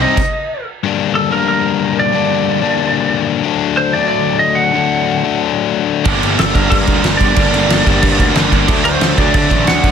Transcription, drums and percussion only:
0, 0, Header, 1, 2, 480
1, 0, Start_track
1, 0, Key_signature, -2, "minor"
1, 0, Tempo, 327511
1, 1206, Time_signature, 4, 2, 24, 8
1, 14530, End_track
2, 0, Start_track
2, 0, Title_t, "Drums"
2, 252, Note_on_c, 9, 49, 103
2, 253, Note_on_c, 9, 36, 107
2, 398, Note_off_c, 9, 49, 0
2, 400, Note_off_c, 9, 36, 0
2, 8871, Note_on_c, 9, 57, 89
2, 8877, Note_on_c, 9, 36, 116
2, 9018, Note_off_c, 9, 57, 0
2, 9023, Note_off_c, 9, 36, 0
2, 9130, Note_on_c, 9, 57, 68
2, 9277, Note_off_c, 9, 57, 0
2, 9360, Note_on_c, 9, 57, 85
2, 9369, Note_on_c, 9, 38, 119
2, 9507, Note_off_c, 9, 57, 0
2, 9516, Note_off_c, 9, 38, 0
2, 9599, Note_on_c, 9, 36, 96
2, 9601, Note_on_c, 9, 57, 66
2, 9745, Note_off_c, 9, 36, 0
2, 9747, Note_off_c, 9, 57, 0
2, 9840, Note_on_c, 9, 57, 85
2, 9842, Note_on_c, 9, 36, 117
2, 9987, Note_off_c, 9, 57, 0
2, 9988, Note_off_c, 9, 36, 0
2, 10073, Note_on_c, 9, 57, 66
2, 10080, Note_on_c, 9, 36, 88
2, 10220, Note_off_c, 9, 57, 0
2, 10227, Note_off_c, 9, 36, 0
2, 10317, Note_on_c, 9, 57, 87
2, 10326, Note_on_c, 9, 38, 108
2, 10464, Note_off_c, 9, 57, 0
2, 10472, Note_off_c, 9, 38, 0
2, 10558, Note_on_c, 9, 57, 71
2, 10560, Note_on_c, 9, 36, 90
2, 10705, Note_off_c, 9, 57, 0
2, 10706, Note_off_c, 9, 36, 0
2, 10792, Note_on_c, 9, 57, 99
2, 10799, Note_on_c, 9, 36, 125
2, 10939, Note_off_c, 9, 57, 0
2, 10946, Note_off_c, 9, 36, 0
2, 11046, Note_on_c, 9, 57, 71
2, 11193, Note_off_c, 9, 57, 0
2, 11289, Note_on_c, 9, 57, 95
2, 11298, Note_on_c, 9, 38, 119
2, 11436, Note_off_c, 9, 57, 0
2, 11445, Note_off_c, 9, 38, 0
2, 11527, Note_on_c, 9, 36, 95
2, 11532, Note_on_c, 9, 57, 73
2, 11674, Note_off_c, 9, 36, 0
2, 11678, Note_off_c, 9, 57, 0
2, 11762, Note_on_c, 9, 57, 98
2, 11766, Note_on_c, 9, 36, 114
2, 11908, Note_off_c, 9, 57, 0
2, 11913, Note_off_c, 9, 36, 0
2, 12006, Note_on_c, 9, 36, 92
2, 12012, Note_on_c, 9, 57, 70
2, 12152, Note_off_c, 9, 36, 0
2, 12158, Note_off_c, 9, 57, 0
2, 12245, Note_on_c, 9, 57, 89
2, 12253, Note_on_c, 9, 38, 117
2, 12391, Note_off_c, 9, 57, 0
2, 12400, Note_off_c, 9, 38, 0
2, 12487, Note_on_c, 9, 36, 90
2, 12493, Note_on_c, 9, 57, 66
2, 12634, Note_off_c, 9, 36, 0
2, 12639, Note_off_c, 9, 57, 0
2, 12726, Note_on_c, 9, 57, 95
2, 12727, Note_on_c, 9, 36, 122
2, 12872, Note_off_c, 9, 57, 0
2, 12874, Note_off_c, 9, 36, 0
2, 12970, Note_on_c, 9, 57, 67
2, 13116, Note_off_c, 9, 57, 0
2, 13207, Note_on_c, 9, 57, 89
2, 13216, Note_on_c, 9, 38, 117
2, 13353, Note_off_c, 9, 57, 0
2, 13362, Note_off_c, 9, 38, 0
2, 13449, Note_on_c, 9, 57, 67
2, 13450, Note_on_c, 9, 36, 94
2, 13596, Note_off_c, 9, 57, 0
2, 13597, Note_off_c, 9, 36, 0
2, 13688, Note_on_c, 9, 57, 88
2, 13694, Note_on_c, 9, 36, 117
2, 13835, Note_off_c, 9, 57, 0
2, 13840, Note_off_c, 9, 36, 0
2, 13932, Note_on_c, 9, 36, 88
2, 13936, Note_on_c, 9, 57, 60
2, 14079, Note_off_c, 9, 36, 0
2, 14083, Note_off_c, 9, 57, 0
2, 14175, Note_on_c, 9, 57, 85
2, 14183, Note_on_c, 9, 38, 120
2, 14321, Note_off_c, 9, 57, 0
2, 14330, Note_off_c, 9, 38, 0
2, 14416, Note_on_c, 9, 36, 92
2, 14416, Note_on_c, 9, 57, 66
2, 14530, Note_off_c, 9, 36, 0
2, 14530, Note_off_c, 9, 57, 0
2, 14530, End_track
0, 0, End_of_file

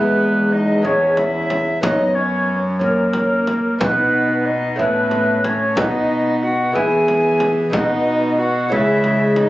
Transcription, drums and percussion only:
0, 0, Header, 1, 2, 480
1, 0, Start_track
1, 0, Key_signature, 5, "major"
1, 0, Tempo, 655022
1, 1337, Time_signature, 6, 3, 24, 8
1, 6956, End_track
2, 0, Start_track
2, 0, Title_t, "Frame drum"
2, 621, Note_on_c, 9, 64, 46
2, 694, Note_off_c, 9, 64, 0
2, 859, Note_on_c, 9, 64, 46
2, 932, Note_off_c, 9, 64, 0
2, 1101, Note_on_c, 9, 64, 52
2, 1175, Note_off_c, 9, 64, 0
2, 1341, Note_on_c, 9, 64, 79
2, 1414, Note_off_c, 9, 64, 0
2, 2060, Note_on_c, 9, 64, 44
2, 2133, Note_off_c, 9, 64, 0
2, 2297, Note_on_c, 9, 64, 46
2, 2370, Note_off_c, 9, 64, 0
2, 2545, Note_on_c, 9, 64, 47
2, 2619, Note_off_c, 9, 64, 0
2, 2789, Note_on_c, 9, 64, 75
2, 2863, Note_off_c, 9, 64, 0
2, 3512, Note_on_c, 9, 64, 45
2, 3585, Note_off_c, 9, 64, 0
2, 3746, Note_on_c, 9, 64, 42
2, 3820, Note_off_c, 9, 64, 0
2, 3990, Note_on_c, 9, 64, 49
2, 4063, Note_off_c, 9, 64, 0
2, 4227, Note_on_c, 9, 64, 81
2, 4301, Note_off_c, 9, 64, 0
2, 4949, Note_on_c, 9, 64, 47
2, 5023, Note_off_c, 9, 64, 0
2, 5190, Note_on_c, 9, 64, 44
2, 5263, Note_off_c, 9, 64, 0
2, 5424, Note_on_c, 9, 64, 48
2, 5497, Note_off_c, 9, 64, 0
2, 5666, Note_on_c, 9, 64, 79
2, 5739, Note_off_c, 9, 64, 0
2, 6388, Note_on_c, 9, 64, 47
2, 6462, Note_off_c, 9, 64, 0
2, 6624, Note_on_c, 9, 64, 46
2, 6697, Note_off_c, 9, 64, 0
2, 6861, Note_on_c, 9, 64, 50
2, 6935, Note_off_c, 9, 64, 0
2, 6956, End_track
0, 0, End_of_file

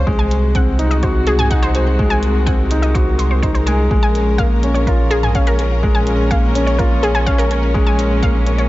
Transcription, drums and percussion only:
0, 0, Header, 1, 2, 480
1, 0, Start_track
1, 0, Key_signature, -5, "minor"
1, 0, Tempo, 480000
1, 73, Time_signature, 4, 2, 24, 8
1, 8686, End_track
2, 0, Start_track
2, 0, Title_t, "Drums"
2, 71, Note_on_c, 9, 36, 106
2, 171, Note_off_c, 9, 36, 0
2, 313, Note_on_c, 9, 42, 59
2, 413, Note_off_c, 9, 42, 0
2, 549, Note_on_c, 9, 42, 43
2, 551, Note_on_c, 9, 36, 109
2, 649, Note_off_c, 9, 42, 0
2, 651, Note_off_c, 9, 36, 0
2, 791, Note_on_c, 9, 42, 67
2, 891, Note_off_c, 9, 42, 0
2, 913, Note_on_c, 9, 42, 29
2, 1013, Note_off_c, 9, 42, 0
2, 1028, Note_on_c, 9, 42, 40
2, 1031, Note_on_c, 9, 36, 100
2, 1128, Note_off_c, 9, 42, 0
2, 1131, Note_off_c, 9, 36, 0
2, 1267, Note_on_c, 9, 42, 58
2, 1367, Note_off_c, 9, 42, 0
2, 1390, Note_on_c, 9, 45, 64
2, 1490, Note_off_c, 9, 45, 0
2, 1508, Note_on_c, 9, 42, 38
2, 1511, Note_on_c, 9, 36, 103
2, 1608, Note_off_c, 9, 42, 0
2, 1611, Note_off_c, 9, 36, 0
2, 1628, Note_on_c, 9, 42, 43
2, 1728, Note_off_c, 9, 42, 0
2, 1747, Note_on_c, 9, 42, 62
2, 1847, Note_off_c, 9, 42, 0
2, 1991, Note_on_c, 9, 36, 99
2, 2091, Note_off_c, 9, 36, 0
2, 2227, Note_on_c, 9, 42, 57
2, 2327, Note_off_c, 9, 42, 0
2, 2470, Note_on_c, 9, 42, 39
2, 2472, Note_on_c, 9, 36, 104
2, 2570, Note_off_c, 9, 42, 0
2, 2572, Note_off_c, 9, 36, 0
2, 2708, Note_on_c, 9, 42, 66
2, 2808, Note_off_c, 9, 42, 0
2, 2829, Note_on_c, 9, 42, 29
2, 2929, Note_off_c, 9, 42, 0
2, 2951, Note_on_c, 9, 36, 101
2, 2952, Note_on_c, 9, 42, 39
2, 3051, Note_off_c, 9, 36, 0
2, 3052, Note_off_c, 9, 42, 0
2, 3191, Note_on_c, 9, 42, 56
2, 3291, Note_off_c, 9, 42, 0
2, 3430, Note_on_c, 9, 36, 102
2, 3433, Note_on_c, 9, 42, 38
2, 3530, Note_off_c, 9, 36, 0
2, 3533, Note_off_c, 9, 42, 0
2, 3552, Note_on_c, 9, 42, 42
2, 3652, Note_off_c, 9, 42, 0
2, 3670, Note_on_c, 9, 42, 60
2, 3770, Note_off_c, 9, 42, 0
2, 3910, Note_on_c, 9, 36, 99
2, 4010, Note_off_c, 9, 36, 0
2, 4152, Note_on_c, 9, 42, 61
2, 4252, Note_off_c, 9, 42, 0
2, 4390, Note_on_c, 9, 36, 103
2, 4390, Note_on_c, 9, 42, 40
2, 4490, Note_off_c, 9, 36, 0
2, 4490, Note_off_c, 9, 42, 0
2, 4631, Note_on_c, 9, 42, 58
2, 4731, Note_off_c, 9, 42, 0
2, 4755, Note_on_c, 9, 42, 26
2, 4855, Note_off_c, 9, 42, 0
2, 4870, Note_on_c, 9, 36, 98
2, 4873, Note_on_c, 9, 42, 37
2, 4970, Note_off_c, 9, 36, 0
2, 4973, Note_off_c, 9, 42, 0
2, 5111, Note_on_c, 9, 42, 56
2, 5211, Note_off_c, 9, 42, 0
2, 5230, Note_on_c, 9, 45, 61
2, 5330, Note_off_c, 9, 45, 0
2, 5349, Note_on_c, 9, 42, 39
2, 5351, Note_on_c, 9, 36, 98
2, 5449, Note_off_c, 9, 42, 0
2, 5451, Note_off_c, 9, 36, 0
2, 5470, Note_on_c, 9, 42, 39
2, 5570, Note_off_c, 9, 42, 0
2, 5589, Note_on_c, 9, 42, 63
2, 5689, Note_off_c, 9, 42, 0
2, 5832, Note_on_c, 9, 36, 93
2, 5932, Note_off_c, 9, 36, 0
2, 6069, Note_on_c, 9, 42, 56
2, 6169, Note_off_c, 9, 42, 0
2, 6312, Note_on_c, 9, 36, 98
2, 6314, Note_on_c, 9, 42, 38
2, 6412, Note_off_c, 9, 36, 0
2, 6414, Note_off_c, 9, 42, 0
2, 6554, Note_on_c, 9, 42, 61
2, 6654, Note_off_c, 9, 42, 0
2, 6675, Note_on_c, 9, 42, 26
2, 6775, Note_off_c, 9, 42, 0
2, 6792, Note_on_c, 9, 36, 93
2, 6793, Note_on_c, 9, 42, 35
2, 6892, Note_off_c, 9, 36, 0
2, 6893, Note_off_c, 9, 42, 0
2, 7034, Note_on_c, 9, 42, 53
2, 7134, Note_off_c, 9, 42, 0
2, 7272, Note_on_c, 9, 36, 93
2, 7272, Note_on_c, 9, 42, 36
2, 7372, Note_off_c, 9, 36, 0
2, 7372, Note_off_c, 9, 42, 0
2, 7394, Note_on_c, 9, 42, 41
2, 7494, Note_off_c, 9, 42, 0
2, 7509, Note_on_c, 9, 42, 59
2, 7609, Note_off_c, 9, 42, 0
2, 7751, Note_on_c, 9, 36, 91
2, 7851, Note_off_c, 9, 36, 0
2, 7989, Note_on_c, 9, 42, 55
2, 8089, Note_off_c, 9, 42, 0
2, 8228, Note_on_c, 9, 36, 91
2, 8229, Note_on_c, 9, 42, 42
2, 8328, Note_off_c, 9, 36, 0
2, 8329, Note_off_c, 9, 42, 0
2, 8465, Note_on_c, 9, 42, 58
2, 8565, Note_off_c, 9, 42, 0
2, 8585, Note_on_c, 9, 42, 25
2, 8685, Note_off_c, 9, 42, 0
2, 8686, End_track
0, 0, End_of_file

